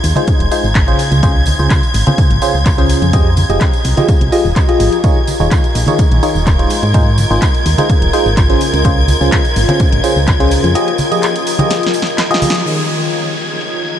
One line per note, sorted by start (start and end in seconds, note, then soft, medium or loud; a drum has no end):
0.00 0.14 D#2 medium
0.00 13.99 A#5 medium
0.00 5.03 G#6 medium
0.00 open hi-hat loud
0.00 tambourine medium
0.16 0.49 G#3 medium
0.16 0.49 D#4 medium
0.16 0.49 F4 medium
0.16 0.49 G#4 medium
0.16 0.49 C5 medium
0.16 closed hi-hat medium
0.16 tambourine soft
0.16 high conga medium
0.27 kick loud
0.27 closed hi-hat medium
0.27 tambourine soft
0.40 0.49 D#1 medium
0.40 closed hi-hat soft
0.51 0.66 G#3 medium
0.51 0.66 D#4 medium
0.51 0.66 F4 medium
0.51 0.66 G#4 medium
0.51 0.66 C5 loud
0.51 open hi-hat loud
0.51 tambourine medium
0.64 0.95 G#1 medium
0.64 tambourine soft
0.75 kick loud
0.75 clap loud
0.75 closed hi-hat medium
0.75 tambourine soft
0.88 1.20 C#3 medium
0.88 1.20 C#4 medium
0.88 1.20 F4 medium
0.88 1.20 G#4 medium
0.88 1.20 C5 medium
0.88 closed hi-hat soft
0.99 open hi-hat loud
0.99 tambourine medium
1.12 1.55 C#2 loud
1.12 closed hi-hat soft
1.12 tambourine soft
1.23 1.37 C#3 medium
1.23 1.37 C#4 medium
1.23 1.37 F4 medium
1.23 1.37 G#4 medium
1.23 1.37 C5 loud
1.23 kick loud
1.23 closed hi-hat medium
1.23 tambourine soft
1.46 open hi-hat loud
1.46 tambourine medium
1.46 high conga medium
1.59 1.68 C#2 loud
1.59 1.81 C#3 medium
1.59 1.81 C#4 medium
1.59 1.81 F4 medium
1.59 1.81 G#4 medium
1.59 1.81 C5 medium
1.59 tambourine soft
1.70 kick loud
1.70 clap loud
1.70 closed hi-hat medium
1.70 tambourine soft
1.83 closed hi-hat soft
1.83 tambourine soft
1.94 2.04 G#1 medium
1.94 open hi-hat loud
1.94 tambourine loud
2.07 2.39 C#3 medium
2.07 2.39 C#4 medium
2.07 2.39 F4 medium
2.07 2.39 G#4 medium
2.07 2.39 C5 medium
2.07 closed hi-hat soft
2.07 tambourine soft
2.07 high conga medium
2.18 kick loud
2.18 closed hi-hat medium
2.18 tambourine medium
2.31 2.40 G#1 medium
2.31 closed hi-hat soft
2.42 2.56 C#3 medium
2.42 2.56 C#4 medium
2.42 2.56 F4 medium
2.42 2.56 G#4 medium
2.42 2.56 C5 loud
2.42 open hi-hat loud
2.42 tambourine medium
2.54 2.98 C#2 medium
2.54 tambourine soft
2.66 kick loud
2.66 clap loud
2.66 closed hi-hat medium
2.66 tambourine soft
2.78 3.11 C#3 medium
2.78 3.11 C#4 medium
2.78 3.11 F4 medium
2.78 3.11 G#4 medium
2.78 3.11 C5 medium
2.78 closed hi-hat soft
2.89 open hi-hat loud
2.89 tambourine medium
3.02 3.45 F2 loud
3.02 closed hi-hat soft
3.02 tambourine soft
3.13 3.28 F3 medium
3.13 3.28 F4 medium
3.13 13.99 F4 medium
3.13 3.28 G4 medium
3.13 3.28 G#4 medium
3.13 3.28 D#5 loud
3.13 kick loud
3.13 closed hi-hat medium
3.13 tambourine medium
3.37 open hi-hat loud
3.37 tambourine medium
3.37 high conga medium
3.50 3.59 F1 loud
3.50 3.72 F3 medium
3.50 3.72 F4 medium
3.50 3.72 G4 medium
3.50 3.72 G#4 medium
3.50 3.72 D#5 medium
3.50 closed hi-hat soft
3.50 tambourine soft
3.55 13.99 A#4 medium
3.61 kick loud
3.61 clap loud
3.61 closed hi-hat medium
3.61 tambourine soft
3.67 13.99 D#5 medium
3.73 closed hi-hat soft
3.73 tambourine soft
3.85 3.95 C2 medium
3.85 open hi-hat loud
3.85 tambourine medium
3.97 4.30 F3 medium
3.97 4.30 F4 medium
3.97 4.30 G4 medium
3.97 4.30 G#4 medium
3.97 4.30 D#5 medium
3.97 closed hi-hat soft
3.97 tambourine soft
3.97 high conga medium
4.08 kick loud
4.08 closed hi-hat medium
4.08 tambourine medium
4.21 4.30 C2 medium
4.21 closed hi-hat soft
4.32 4.47 F3 medium
4.32 4.47 F4 medium
4.32 4.47 G4 medium
4.32 4.47 G#4 medium
4.32 4.47 D#5 loud
4.32 open hi-hat loud
4.32 tambourine medium
4.45 4.54 D#1 loud
4.45 tambourine soft
4.56 kick loud
4.56 clap loud
4.56 closed hi-hat medium
4.56 tambourine soft
4.69 5.01 F3 medium
4.69 5.01 F4 medium
4.69 5.01 G4 medium
4.69 5.01 G#4 medium
4.69 5.01 D#5 medium
4.69 closed hi-hat soft
4.80 4.90 G#1 medium
4.80 open hi-hat loud
4.80 tambourine medium
4.92 closed hi-hat soft
4.92 tambourine soft
5.04 5.18 D#3 medium
5.04 5.18 D#4 medium
5.04 5.18 F4 medium
5.04 5.18 G#4 medium
5.04 5.18 C#5 loud
5.04 12.64 G#6 medium
5.04 kick loud
5.04 closed hi-hat medium
5.04 tambourine soft
5.27 open hi-hat loud
5.27 tambourine medium
5.27 high conga medium
5.40 5.49 D#1 medium
5.40 5.62 D#3 medium
5.40 5.62 D#4 medium
5.40 5.62 F4 medium
5.40 5.62 G#4 medium
5.40 5.62 C#5 medium
5.40 tambourine soft
5.51 kick loud
5.51 clap loud
5.51 closed hi-hat medium
5.51 tambourine soft
5.64 closed hi-hat soft
5.64 tambourine soft
5.75 5.85 A#1 medium
5.75 open hi-hat loud
5.75 tambourine medium
5.87 6.20 D#3 medium
5.87 6.20 D#4 medium
5.87 6.20 F4 medium
5.87 6.20 G#4 medium
5.87 6.20 C#5 medium
5.87 closed hi-hat soft
5.87 tambourine soft
5.87 high conga medium
5.98 kick loud
5.98 closed hi-hat medium
5.98 tambourine soft
6.12 6.21 A#1 medium
6.12 closed hi-hat soft
6.23 6.37 D#3 medium
6.23 6.37 D#4 medium
6.23 6.37 F4 medium
6.23 6.37 G#4 medium
6.23 6.37 C#5 medium
6.23 open hi-hat loud
6.23 tambourine medium
6.35 6.67 D#1 medium
6.35 tambourine soft
6.47 kick loud
6.47 clap loud
6.47 closed hi-hat medium
6.47 tambourine medium
6.59 6.92 G#3 medium
6.59 6.92 D#4 medium
6.59 6.92 F4 medium
6.59 6.92 G#4 medium
6.59 6.92 C5 medium
6.59 closed hi-hat soft
6.70 open hi-hat loud
6.70 tambourine medium
6.83 7.26 G#2 loud
6.83 closed hi-hat soft
6.83 tambourine soft
6.94 7.09 G#3 medium
6.94 7.09 D#4 medium
6.94 7.09 F4 medium
6.94 7.09 G#4 medium
6.94 7.09 C5 loud
6.94 kick loud
6.94 closed hi-hat medium
6.94 tambourine soft
7.18 open hi-hat loud
7.18 tambourine medium
7.18 high conga medium
7.30 7.40 G#1 loud
7.30 7.53 G#3 medium
7.30 7.53 D#4 medium
7.30 7.53 F4 medium
7.30 7.53 G#4 medium
7.30 7.53 C5 medium
7.30 tambourine soft
7.42 kick loud
7.42 clap loud
7.42 closed hi-hat medium
7.42 tambourine soft
7.54 closed hi-hat soft
7.54 tambourine soft
7.66 7.76 D#2 medium
7.66 open hi-hat loud
7.66 tambourine medium
7.78 8.11 G#3 medium
7.78 8.11 D#4 medium
7.78 8.11 F4 medium
7.78 8.11 G#4 medium
7.78 8.11 C5 medium
7.78 closed hi-hat medium
7.78 tambourine soft
7.78 high conga medium
7.89 kick loud
7.89 closed hi-hat medium
7.89 tambourine soft
8.02 8.11 D#1 medium
8.02 closed hi-hat medium
8.13 8.28 G#3 medium
8.13 8.28 D#4 medium
8.13 8.28 F4 medium
8.13 8.28 G#4 medium
8.13 8.28 C5 loud
8.13 open hi-hat medium
8.13 tambourine medium
8.26 8.57 G#1 medium
8.26 tambourine soft
8.37 kick loud
8.37 clap loud
8.37 closed hi-hat medium
8.37 tambourine soft
8.50 8.82 C#3 medium
8.50 8.82 C#4 medium
8.50 8.82 F4 medium
8.50 8.82 G#4 medium
8.50 8.82 C5 medium
8.50 closed hi-hat soft
8.61 open hi-hat loud
8.61 tambourine medium
8.73 9.17 C#2 loud
8.73 closed hi-hat soft
8.73 tambourine soft
8.85 8.99 C#3 medium
8.85 8.99 C#4 medium
8.85 8.99 F4 medium
8.85 8.99 G#4 medium
8.85 8.99 C5 loud
8.85 kick loud
8.85 closed hi-hat medium
8.85 tambourine soft
9.08 open hi-hat loud
9.08 tambourine medium
9.08 high conga medium
9.21 9.30 C#2 loud
9.21 9.43 C#3 medium
9.21 9.43 C#4 medium
9.21 9.43 F4 medium
9.21 9.43 G#4 medium
9.21 9.43 C5 medium
9.21 tambourine soft
9.32 kick loud
9.32 clap loud
9.32 closed hi-hat medium
9.32 tambourine soft
9.45 closed hi-hat soft
9.45 tambourine soft
9.56 9.66 G#1 medium
9.56 open hi-hat loud
9.56 tambourine medium
9.68 10.01 C#3 medium
9.68 10.01 C#4 medium
9.68 10.01 F4 medium
9.68 10.01 G#4 medium
9.68 10.01 C5 medium
9.68 closed hi-hat medium
9.68 tambourine soft
9.68 high conga medium
9.79 kick loud
9.79 closed hi-hat medium
9.79 tambourine soft
9.93 10.02 G#1 medium
9.93 closed hi-hat medium
10.04 10.18 C#3 medium
10.04 10.18 C#4 medium
10.04 10.18 F4 medium
10.04 10.18 G#4 medium
10.04 10.18 C5 loud
10.04 open hi-hat loud
10.04 tambourine medium
10.16 10.59 C#2 medium
10.16 tambourine soft
10.27 kick loud
10.27 clap loud
10.27 closed hi-hat medium
10.27 tambourine soft
10.40 10.73 C#3 medium
10.40 10.73 C#4 medium
10.40 10.73 F4 medium
10.40 10.73 G#4 medium
10.40 10.73 C5 medium
10.40 closed hi-hat soft
10.51 open hi-hat loud
10.51 tambourine medium
10.64 10.75 F2 loud
10.64 closed hi-hat soft
10.64 tambourine soft
10.75 10.90 F3 loud
10.75 10.90 F4 medium
10.75 10.90 G4 medium
10.75 10.90 G#4 medium
10.75 10.90 D#5 loud
10.75 closed hi-hat medium
10.75 tambourine soft
10.88 closed hi-hat soft
10.98 open hi-hat loud
10.98 tambourine medium
10.98 high conga medium
11.12 11.34 F3 medium
11.12 11.34 F4 medium
11.12 11.34 G4 medium
11.12 11.34 G#4 medium
11.12 11.34 D#5 medium
11.12 closed hi-hat soft
11.12 tambourine soft
11.22 clap loud
11.22 closed hi-hat medium
11.22 tambourine soft
11.36 closed hi-hat soft
11.36 tambourine soft
11.47 open hi-hat loud
11.47 tambourine medium
11.59 11.92 F3 medium
11.59 11.92 F4 medium
11.59 11.92 G4 medium
11.59 11.92 G#4 medium
11.59 11.92 D#5 medium
11.59 closed hi-hat medium
11.59 tambourine soft
11.59 high conga loud
11.70 snare medium
11.70 closed hi-hat medium
11.70 tambourine medium
11.83 snare medium
11.83 closed hi-hat medium
11.83 tambourine soft
11.94 open hi-hat loud
11.94 tambourine medium
12.02 snare medium
12.06 closed hi-hat soft
12.06 tambourine soft
12.18 snare medium
12.18 clap loud
12.18 closed hi-hat medium
12.18 tambourine soft
12.31 12.63 F3 medium
12.31 12.63 F4 medium
12.31 12.63 G4 medium
12.31 12.63 G#4 medium
12.31 12.63 D#5 loud
12.31 snare loud
12.31 closed hi-hat soft
12.31 tambourine soft
12.42 open hi-hat loud
12.42 tambourine medium
12.42 high conga medium
12.50 snare loud
12.55 closed hi-hat soft
12.55 tambourine soft
12.66 13.99 D#3 medium
12.66 13.99 F4 medium
12.66 13.99 G#4 medium
12.66 13.99 C#5 medium
12.66 13.99 D#5 medium
12.66 13.99 G#6 medium
12.66 closed hi-hat medium
12.66 downlifter medium
12.90 open hi-hat medium
13.13 closed hi-hat medium
13.26 closed hi-hat soft
13.37 open hi-hat medium
13.50 closed hi-hat soft
13.61 closed hi-hat medium
13.74 closed hi-hat soft
13.85 open hi-hat medium